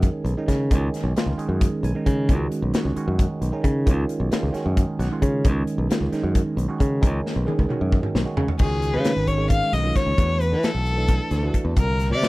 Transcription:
Already playing: D#3 G#3 C#4 G#4
0.02 kick, closed hi-hat
0.25 B1, closed hi-hat
0.37 D#3 G#3 C#4 D#4
0.48 C#3, kick, snare, closed hi-hat
0.71 C#2 D#3 G#3 C#4 G#4, kick, closed hi-hat
0.94 snare, closed hi-hat
1.04 B1
1.16 D#3 G#3 C#4 F4, snare, closed hi-hat
1.26 C#2
1.37 D#3 G#3 C#4 G#4, muted fingered electric bass stroke, closed hi-hat
1.49 F#2
1.61 kick, closed hi-hat
1.83 B1 G#5, closed hi-hat
1.95 D#3 G#3 C#4 D#4
2.06 C#3 D#5, kick, closed hi-hat
2.29 C#2 D#3 G#3 C#4 F#4, kick, closed hi-hat
2.52 closed hi-hat
2.62 B1
2.73 D#3 G#3 C#4 F#4, snare, closed hi-hat
2.85 C#2
2.96 D#3 G#3 C#4 F#4, muted fingered electric bass stroke, closed hi-hat
3.08 F#2
3.19 kick, closed hi-hat
3.42 B1, closed hi-hat
3.52 D#3 G#3 C#4 D#4
3.64 C#3, kick, closed hi-hat
3.86 C#2 D#3 G#3 C#4 F4, kick, closed hi-hat
4.09 closed hi-hat
4.20 B1
4.31 D#3 G#3 C#4 F4, snare, closed hi-hat
4.43 C#2
4.53 D#3 G#3 C#4 F#4, muted fingered electric bass stroke, snare, closed hi-hat
4.66 F#2
4.77 kick, closed hi-hat
4.99 B1 F#5, snare, closed hi-hat
5.11 D#3 G#3 C#4 F4
5.22 C#3 C#5, kick, closed hi-hat
5.45 C#2 D#3 G#3 C#4 G#4, kick, closed hi-hat
5.67 closed hi-hat
5.78 B1
5.89 D#3 G#3 C#4 F4, snare, closed hi-hat
6.01 C#2
6.12 D#3 G#3 C#4 D#4, snare, closed hi-hat
6.23 F#2
6.35 kick, closed hi-hat
6.57 B1, closed hi-hat
6.68 D#3 G#3 C#4 F#4
6.80 C#3, kick, closed hi-hat
7.01 C#2 D#3 G#3 C#4 D#4, kick, closed hi-hat
7.26 snare
7.36 B1
7.46 D#3 G#3 C#4 G#4, high tom
7.59 C#2, kick
7.69 D#3 G#3 C#4 F#4, muted fingered electric bass stroke, mid tom
7.81 F#2
7.92 kick
8.03 mid tom
8.15 B1, snare
8.25 D#3 G#3 C#4 F#4
8.37 C#3, floor tom
8.48 floor tom
8.59 C#2 D#3 G#3 C#4 F#4 G#4, kick, crash
8.82 closed hi-hat
8.93 C#3 B4
9.04 D#3 G#3 C#4 D#4, snare, closed hi-hat
9.16 G#1
9.27 C#5, kick, closed hi-hat
9.37 D#3 G#3 C#4 G#4
9.50 F5, kick, closed hi-hat
9.73 B1 D#5, snare, closed hi-hat
9.83 D#3 G#3 C#4 F4
9.96 C#5, kick, snare, closed hi-hat
10.07 C#2
10.17 E2 E3 A3 D4 F#4, kick, closed hi-hat
10.41 B4, closed hi-hat
10.52 E3
10.63 E3 A3 D4 A4, snare, closed hi-hat
10.75 B1
10.86 closed hi-hat
10.97 E3 A3 D4 A4
11.08 kick, snare, closed hi-hat
11.31 D2, snare, closed hi-hat
11.43 E3 A3 D4 F#4
11.54 kick, closed hi-hat
11.65 E2
11.76 C2 D3 G3 C4 F4 A#4, kick, closed hi-hat
12.00 snare, closed hi-hat
12.10 C3 D5
12.21 D3 G3 C4 F4, snare, closed hi-hat

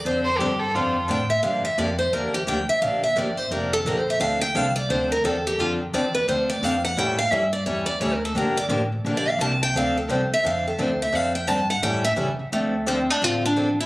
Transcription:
0.05 F2 D3 F3 C4 D4 A4 C5
0.25 C5
0.38 G2 D3 F3 C4 D4 G4 A4
0.59 A4
0.75 F2 D3 F3 C4 D4 F4 A4
1.08 A2 D3 F3 C4 D4 A4 G5
1.30 E5
1.43 G2 D3 F3 A#3 D4 G4 F5
1.64 E5, muted upright bass stroke
1.78 F2 D3 F3 A#3 D4 G4 D5
1.99 C5
2.13 E2 D3 F3 A#3 D4 G4 A#4
2.34 G4
2.47 D2 D3 F3 A#3 D4 G4 G5
2.69 E5, muted upright bass stroke
2.82 A#1 D3 F3 A#3 D4 G4 F5
3.03 E5
3.16 G1 D3 F3 A#3 D4 G4 D5
3.37 C5
3.51 F1 D3 F3 A#3 D4 G4 A#4
3.73 A4
3.85 A#1 D3 F3 A#3 D4 G4 A#4
3.99 C5
4.10 E5
4.20 D2 D3 F3 C4 D4 A4 F5
4.41 G5
4.55 C2 D3 F3 C4 D4 A4 F5
4.76 D5
4.89 D2 D3 F3 C4 D4 A4 C5
5.12 A#4
5.24 E2 D3 F3 C4 D4 A4
5.47 G4
5.58 F2 D3 F3 C4 D4 F4 A4
5.93 E2 D3 F3 C4 D4 A4 D5
6.15 B4
6.28 D2 D3 F3 C4 D4 A4 C5
6.50 D5
6.61 F2 D3 F3 C4 D4 A4 F5
6.85 F#5
6.96 A2 E3 G3 C#4 E4 A4 G5
7.18 F5
7.31 G2 E3 G3 C#4 E4 A4 E5
7.53 D5
7.66 E2 E3 G3 C#4 E4 A4 C#5
7.86 D5
8.00 D2 E3 G3 C#4 E4 A4 C#5
8.14 A#4
8.25 A4
8.35 G1 D3 F3 A#3 D4 G4 A#4
8.57 D5
8.69 A1 D3 F3 A#3 D4 G4
9.05 A#1 D3 F3 A#3 D4 G4
9.17 D5
9.29 F5
9.38 C2 D3 F3 A#3 D4 G4 A5
9.63 G5
9.74 D2 D3 F3 C4 D4 A4 F5
9.97 A4
10.09 C2 D3 F3 C4 D4 A4 C5
10.30 E5, muted upright bass stroke
10.43 F2 D3 F3 C4 D4 A4 F5
10.67 A4
10.78 D2 D3 F3 C4 D4 A4 C5
11.02 E5
11.12 F2 D3 F3 C4 D4 A4 F5
11.35 G5
11.47 G2 D3 F3 C4 D4 A4 A5
11.70 F#5
11.82 A2 E3 G3 C#4 E4 A4 G5
12.04 E5
12.16 C#3 E3 G3 C#4 E4 A4
12.39 muted upright bass stroke
12.52 D2 D3 F3 A3 C4 D4 A4
12.86 D3 F3 C4 D4 A4
13.10 D4
13.22 A1 D3 F3 C4 D4 F4 A4
13.45 D4
13.56 D3 F3 C4 D4 A4
13.80 E4

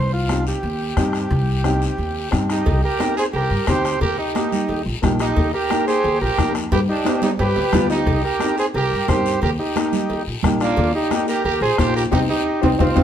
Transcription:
Already playing: C2 C5
0.13 F4
0.29 C4 D#4 G4, bombo rim, high conga, short guiro
0.47 G4, short guiro
0.63 D#2, high conga, long guiro
0.97 G2 C4 D#4 G4, bombo low, bombo rim, high conga, short guiro
1.13 bombo rim, short guiro
1.30 C2, bombo low, long guiro
1.64 C4 D#4 G4, bombo rim, high conga, short guiro
1.82 short guiro
1.98 D#2, high conga, long guiro
2.31 G2 C4 D#4 G4, bombo low, bombo rim, high conga, short guiro
2.50 D#4 G4, bombo rim, short guiro
2.66 C2, bombo low, cowbell, long guiro
2.83 G4 A#4
2.99 C4 D#4 G4, bombo rim, cowbell, high conga, short guiro
3.17 G#4 C5, short guiro
3.33 C2 G4 A#4, cowbell, high conga, long guiro
3.50 G2
3.66 D2 C4 D#4 G4 C5, bombo low, bombo rim, cowbell, high conga, short guiro
3.85 bombo rim, short guiro
4.01 D#2 G4 A#4, bombo low, cowbell, high conga, long guiro
4.18 D#4 G4
4.35 A#3 D#4 G4, bombo rim, cowbell, high conga, short guiro
4.52 low conga, short guiro
4.68 D#2, cowbell, high conga, long guiro
4.86 A#1
5.02 A#1 A#3 D#4 G4, bombo low, bombo rim, cowbell, high conga, low conga, low timbale, short guiro
5.19 D#4 G4, bombo rim, short guiro
5.36 D#2, bombo low, cowbell, high conga, long guiro
5.54 G4 A#4
5.70 A#3 D#4 G4, bombo rim, cowbell, high conga, short guiro
5.87 G4 G#4 C5, short guiro
6.04 D#2, cowbell, high conga, long guiro
6.21 A#1 G4 A#4
6.38 F2 A#3 D#4 G4, bombo low, bombo rim, cowbell, high conga, short guiro
6.55 bombo rim, short guiro
6.72 G2 G4 B4, bombo low, cowbell, high timbale, long guiro
6.89 D4 D#4 G4
7.05 B3 D4 G4, bombo rim, cowbell, high conga, high timbale, short guiro
7.22 D#4 G4, low conga, low timbale, short guiro
7.39 G2 G4 B4, cowbell, high conga, low timbale, long guiro
7.56 D2, low timbale
7.73 D2 B3 D4 F4, bombo low, bombo rim, cowbell, high conga, low conga, low timbale, short guiro
7.90 D#4 G4, low timbale, short guiro
8.06 C2, bombo low, cowbell, high conga, long guiro
8.24 G4 A#4
8.40 C4 D#4 G4, bombo rim, cowbell, high conga, short guiro
8.58 G#4 C5, short guiro
8.74 C2 G4 A#4, cowbell, high conga, long guiro
8.92 G2
9.08 G2 C4 D#4 G4 A#4 C5, bombo low, bombo rim, cowbell, high conga, low timbale, short guiro
9.26 short guiro
9.42 D#2 G4 A#4, bombo low, cowbell, high conga, long guiro
9.59 D#4 G4
9.76 A#3 D#4 G4, bombo rim, cowbell, high conga, short guiro
9.93 low conga, short guiro
10.09 D#2, cowbell, high conga, long guiro
10.27 A#1
10.43 A#1 A#3 D#4 G4, bombo low, bombo rim, cowbell, high conga, low conga, short guiro
10.60 A#3 D4 F4, bombo rim, short guiro
10.77 D#2, bombo low, cowbell, high conga, long guiro
10.94 D#4 G4
11.11 A#3 D#4 G4, bombo rim, cowbell, high conga, short guiro
11.28 G4 A#4, short guiro
11.45 D#2 G4 A#4, cowbell, high conga, long guiro
11.61 A#1 G#4 C5
11.78 A#1 A#3 D#4 F4 G4 C5, bombo low, bombo rim, cowbell, high conga, short guiro
11.96 G4 A#4, short guiro
12.11 C2 C4 D#4 G4, bombo low, high conga, high timbale, long guiro
12.29 D#4 G4
12.61 C2 C4 D#4 G4, bombo low, high conga, high timbale, long guiro
12.79 C2 C4 D#4 F4 G4, bombo low, high conga, high timbale, long guiro
12.95 C2 C4 D#4 G4, bombo low, high conga, high timbale, long guiro

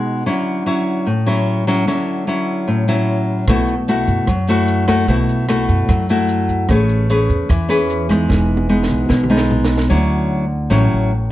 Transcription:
Already playing: B2 G#3 D#4 F#4
0.26 D3 F#3 C#4 E4
0.66 F#3 C#4 E4
1.06 A2
1.27 F#3 C#4 E4
1.67 F#3 C#4 E4
1.87 D3 F#3 C#4 E4
2.27 F#3 C#4 E4
2.68 A2
2.88 F#3 C#4 E4
3.47 B1 B2 A3 E4 F#4, kick, cross-stick, closed hi-hat
3.68 closed hi-hat
3.88 A3 E4 F#4, closed hi-hat
4.07 F#2, kick, closed hi-hat
4.27 F#2 F#3, kick, cross-stick, closed hi-hat
4.47 A3 E4 F#4, closed hi-hat
4.68 closed hi-hat
4.88 A3 E4 F#4, kick, cross-stick, closed hi-hat
5.08 B1 B2 A3 E4 F#4, kick, closed hi-hat
5.29 closed hi-hat
5.49 A3 E4 F#4, cross-stick, closed hi-hat
5.69 F#2, kick, closed hi-hat
5.89 F#2 F#3, kick, cross-stick, closed hi-hat
6.09 A3 E4 F#4, closed hi-hat
6.29 closed hi-hat
6.49 kick, closed hi-hat
6.69 A1 A3 C#4 G#4 B4, kick, cross-stick, closed hi-hat
6.89 closed hi-hat
7.10 C#4 G#4 B4, closed hi-hat
7.29 E2, kick, closed hi-hat
7.49 E2 E3, kick, cross-stick, closed hi-hat
7.69 C#4 G#4 B4, closed hi-hat
7.90 closed hi-hat
8.09 G#3 B3 D#4, kick, cross-stick, closed hi-hat
8.29 E1 E3, kick, snare
8.57 high tom
8.69 G#3 B3 D#4
8.83 snare
8.90 B1
9.09 B1 B2, kick, snare
9.24 mid tom
9.30 G#3 B3 D#4
9.37 snare
9.51 floor tom
9.65 snare
9.78 snare
9.89 D2 D3 F#3 C#4 E4
10.70 A1 A2 F#3 C#4 E4
10.91 A1

